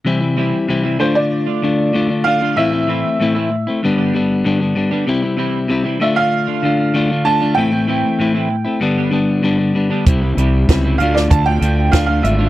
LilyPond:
<<
  \new Staff \with { instrumentName = "Upright piano" } { \time 4/4 \key d \dorian \tempo 4 = 96 r4. c''16 d''4.~ d''16 f''8 | e''2 r2 | r4. e''16 f''4.~ f''16 a''8 | g''2 r2 |
r4. f''16 d''16 a''16 g''8. f''16 f''16 e''8 | }
  \new Staff \with { instrumentName = "Clean electric guitar" } { \time 4/4 \key d \dorian r8 <e g c' e'>16 r8 <e g c' e'>16 r8. <d a d' f'>16 r4 r16 <d a d' f'>16 | r8 <e a c' e'>16 r8 <e a c' e'>16 r8. <g b d' g'>16 r4 r16 <g b d' g'>16 | r8 <e g c' e'>16 r8 <e g c' e'>16 r8. <d a d' f'>16 r4 r16 <d a d' f'>16 | r8 <e a c' e'>16 r8 <e a c' e'>16 r8. <g b d' g'>16 r4 r16 <g b d' g'>16 |
r8 <e g c' g'>16 r8 <e g c' g'>16 r8. <d a d' f'>16 r4 r16 <d a d' f'>16 | }
  \new Staff \with { instrumentName = "Overdriven electric guitar" } { \time 4/4 \key d \dorian <c e g c' e'>16 <g c' e'>16 <e g c' e'>8 <c e g c' e'>16 <g c' e'>16 <d a d' f'>16 <a d' f'>8. <d a d' f'>8 <d a d' f'>16 <a d' f'>16 <d a d' f'>16 <a d' f'>16 | <a, e a c' e'>16 <a c' e'>16 <e a c' e'>8 <a, e a c' e'>16 <a c' e'>8 <a c' e'>16 <g, d g b d'>8 <d g b d'>8 <g, d g b d'>16 <g b d'>16 <d g b d'>16 <g b d'>16 | <c g c' e'>16 <g c' e'>16 <c g c' e'>8 <c g c' e'>16 <g c' e'>16 <d a d' f'>16 <a d' f'>8. <d a d' f'>8 <d a d' f'>16 <a d' f'>16 <d a d' f'>16 <a d' f'>16 | <a, e a c' e'>16 <a c' e'>16 <e a c' e'>8 <a, e a c' e'>16 <a c' e'>8 <a c' e'>16 <g, d g b d'>8 <d g b d'>8 <g, d g b d'>16 <g b d'>16 <d g b d'>16 <g b d'>16 |
<c g c' e'>16 <g c' e'>16 <c g c' e'>8 <c g c' e'>16 <g c' e'>16 <d a d' f'>16 <a d' f'>8. <d a d' f'>8 <d a d' f'>16 <a d' f'>16 <d a d' f'>16 <a d' f'>16 | }
  \new Staff \with { instrumentName = "Fingered electric bass" } { \clef bass \time 4/4 \key d \dorian r1 | r1 | r1 | r1 |
c,8 c,8 cis,8 d,8 d,8 d,8 d,8 aes,,8 | }
  \new DrumStaff \with { instrumentName = "Drums" } \drummode { \time 4/4 r4 r4 r4 r4 | r4 r4 r4 r4 | r4 r4 r4 r4 | r4 r4 r4 r4 |
<hh bd>8 hh8 <hh bd sn>8 hh16 sn16 <hh bd>8 hh8 <hh bd sn>8 hh8 | }
>>